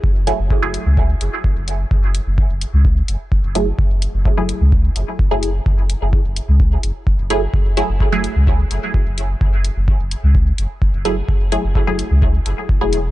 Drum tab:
HH |-x-x-x-x|-x-x-x-x|-x-x-x-x|-x-x-x-x|
BD |o-o-o-o-|o-o-o-o-|o-o-o-o-|o-o-o-o-|

HH |-x-x-x-x|-x-x-x-x|-x-x-x-x|
BD |o-o-o-o-|o-o-o-o-|o-o-o-o-|